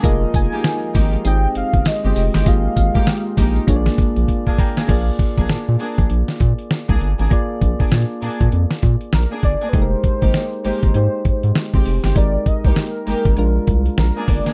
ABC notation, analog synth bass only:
X:1
M:4/4
L:1/16
Q:"Swing 16ths" 1/4=99
K:Bbmix
V:1 name="Analog synth bass" clef=bass
F,,,2 F,,, z3 A,,,2 A,,,2 G,,, G,,, z G,,, F,,, G,,, | A,,,2 A,,, z3 B,,,2 B,,,2 B,,, B,,, z4 | B,,,2 z B,,, B,, B,, z B,,, B,,, z B,, z2 C,, G,,, A,,, | z2 B,,, z B,, z B,, B,, F,, z B,, z B,,, z G,,, z |
F,,,2 z A,,, z2 A,,, A,,, A,, z A,, A,, z A,,, F,,, G,,, | A,,,2 z C,, z2 A,,, A,,, B,,,2 C,,2 B,,, z G,,, z |]